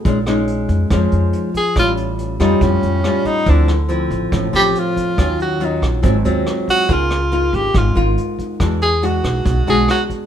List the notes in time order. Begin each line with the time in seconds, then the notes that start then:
0.05 A#1 A#2 G#3 C#4 D#4, kick, closed hi-hat
0.26 G#3 C#4 D#4, cross-stick, closed hi-hat
0.47 closed hi-hat
0.69 F2, kick, closed hi-hat
0.90 F2 F3 G#3 C#4 D#4, kick, cross-stick, closed hi-hat
1.12 F2, closed hi-hat
1.33 closed hi-hat
1.54 G#4, kick, closed hi-hat
1.76 A1 A2 G3 C#4 F4, kick, cross-stick, closed hi-hat
1.97 closed hi-hat
2.18 closed hi-hat
2.40 F2 G3 C#4 D#4 F4, kick, cross-stick, closed hi-hat
2.61 F2 A2 C#4, kick, closed hi-hat
2.83 F2, closed hi-hat
3.04 G3 C#4 F4, cross-stick, closed hi-hat
3.25 D#4, kick, closed hi-hat
3.46 D2 D3 F3 C4 D4 E4, kick, closed hi-hat
3.68 cross-stick, closed hi-hat
3.89 F3 C4 E4, closed hi-hat
4.11 A1, kick, closed hi-hat
4.32 A1 A2, kick, cross-stick, closed hi-hat
4.53 A1 F3 C4 G4, closed hi-hat
4.75 closed hi-hat
4.79 F4
4.97 kick, closed hi-hat
5.18 D#2 D#3 F#3 C#4 F4, kick, cross-stick, closed hi-hat
5.39 F#4, closed hi-hat
5.60 F#3 C#4 F4, closed hi-hat
5.65 D#4
5.82 A#1, kick, cross-stick, closed hi-hat
6.03 G#1 G#2 F#3 C4 F4, kick, closed hi-hat
6.25 D#2 F#3 C4 F4, closed hi-hat
6.46 cross-stick, closed hi-hat
6.68 F#4, kick, closed hi-hat
6.89 C#2 C#3 A#3 D#4 F4, kick, closed hi-hat
6.93 F4
7.10 cross-stick, closed hi-hat
7.32 A#3 D#4 F4, closed hi-hat
7.53 G#1 G4, kick, closed hi-hat
7.74 G#1 G#2 F4, kick, cross-stick, closed hi-hat
7.95 G#1 A#3 D#4 F4, closed hi-hat
8.17 closed hi-hat
8.39 kick, closed hi-hat
8.60 E2 E3 G#3 D4 F#4, kick, cross-stick, closed hi-hat
8.81 G#4, closed hi-hat
9.02 G#3 D4 F#4, closed hi-hat
9.24 B1, kick, cross-stick, closed hi-hat
9.45 B1 B2, kick, closed hi-hat
9.67 B1 G#3 D4 F#4 G#4, closed hi-hat
9.88 F#4, cross-stick, closed hi-hat
10.10 kick, closed hi-hat